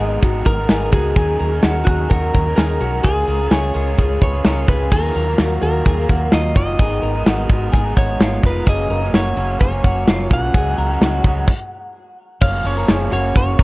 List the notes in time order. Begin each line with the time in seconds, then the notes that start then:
Already playing: G#3 D#5
0.00 G#1 B3 D#4 G#4 A#4
0.22 G#1 G#2 D#3 G#3 B3 D#4 F#4 A#4, kick, closed hi-hat
0.46 G#1 A#4, kick, closed hi-hat
0.57 G#3 B3 D#4 A#4
0.69 G#1 G#4, snare, closed hi-hat
0.92 C#2 G#3 B3 D#4 F#4 G#4 A#4, kick, closed hi-hat
1.16 D#2 F#3 C#4 D#4 G#4 A#4, kick, closed hi-hat
1.39 D#2 A#4, closed hi-hat
1.52 C#4 D#4 A#4
1.63 D#2 F#4, snare, closed hi-hat
1.85 D#2 F#3 C#4 D#4 F#4 G#4, kick, closed hi-hat
1.90 A#4
2.10 D#2 D#3 F#3 C#4 D#4 F#4 A#4, kick, closed hi-hat
2.34 D#2 A#4, kick, closed hi-hat
2.45 C#4 D#4 A#4
2.56 D#2 G#4 A#4, snare, closed hi-hat
2.80 B1 F#3 C#4 D#4 F#4 A#4, closed hi-hat
3.03 C#2 G#3 C#4 F4 G#4, kick, closed hi-hat
3.28 C#2 A#4, closed hi-hat
3.40 C#4 F4 G#4
3.51 C#2 G#4 C#5, snare, closed hi-hat
3.74 C#2 G#3 C#4 F4 G#4 A#4, closed hi-hat
3.98 C#2 C#3 G#3 C#4 F4 G#4, kick, closed hi-hat
4.22 C#2 B4 C#5, kick, closed hi-hat
4.33 C#4 F4 G#4
4.45 C#2 A#4, snare, closed hi-hat
4.67 C#2 G#3 C#4 F4 G#4 B4, kick, open hi-hat
4.92 D#2 D#3 F#3 A#3 F4 G#4 A#4, kick, crash
5.15 D#2 A#4, closed hi-hat
5.27 F#3 A#3 F4
5.38 D#2 F#4, snare, closed hi-hat
5.62 D#2 D#3 F#3 A#3 F4 A#4, closed hi-hat
5.85 D#2 G#4, kick, closed hi-hat
5.97 F#3 A#3 F4
6.09 D#2 F#4, kick, closed hi-hat
6.32 D#2 F4 D#5, snare, closed hi-hat
6.55 F#1 D#3 F#3 A#3 F4 D#5, kick, closed hi-hat
6.79 G#1 G#2 D#3 G#3 B3 D#4 G#4 A#4, kick, closed hi-hat
7.02 G#1 A#4, closed hi-hat
7.15 G#3 B3 D#4 A#4
7.26 G#1 F#4, snare, closed hi-hat
7.49 G#1 G#3 B3 D#4 A#4, kick, closed hi-hat
7.72 G#1 G#4, kick, closed hi-hat
7.84 G#3 B3 D#4 A#4
7.97 G#1 F#4 C#5, kick, closed hi-hat
8.19 G#1 F4, snare, closed hi-hat
8.43 F1 G#3 B3 D#4 A#4 B4, kick, closed hi-hat
8.66 F#1 F#2 C#3 F#3 A#3 C#4 G#4 D#5, kick, closed hi-hat
8.90 F#1 A#4, closed hi-hat
9.02 F#3 A#3 C#4
9.13 F#1 F#4 C#5, snare, closed hi-hat
9.36 F#1 C#3 F#3 A#3 C#4, closed hi-hat
9.60 F#1 G#4 C#5, kick, closed hi-hat
9.72 F#3 A#3 C#4
9.84 F#1 F#4, kick, closed hi-hat
10.07 F#1 F4, snare, closed hi-hat
10.30 B1 C#3 F#3 A#3 C#4 F#5, kick, closed hi-hat
10.54 C#2 C#3 F#3 G#3 C#4 G#4, kick, closed hi-hat
10.78 C#2 A#4, closed hi-hat
10.89 F#3 G#3 C#4
11.01 C#2 F#4, snare, closed hi-hat
11.24 C#2 C#3 F#3 G#3 C#4, kick, closed hi-hat
11.48 kick, crash
12.41 F#1 F#2 C#3 F3 A#3 C#4 C#5 F5, kick, crash
12.64 F#1 C#3 F3 A#3 C#4 C#5, closed hi-hat
12.77 F3 A#3 C#4 A#4
12.88 F#1 G#4, snare, closed hi-hat
13.12 F#1 C#3 A#3 C#4 F#4 C#5, closed hi-hat
13.35 F#1 C#5, kick, closed hi-hat
13.59 F#1 C#3 A#4, kick, closed hi-hat